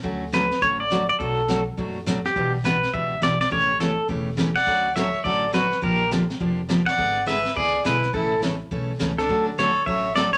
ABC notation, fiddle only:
X:1
M:4/4
L:1/8
Q:"Swing" 1/4=208
K:D
V:1 name="Fiddle"
z8 | z8 | z8 | z6 z d- |
d2 c2 A2 F2 | G2 z4 z d- | d2 B2 ^G2 E2 | E2 z4 z D- |
D z A2 c2 A A |]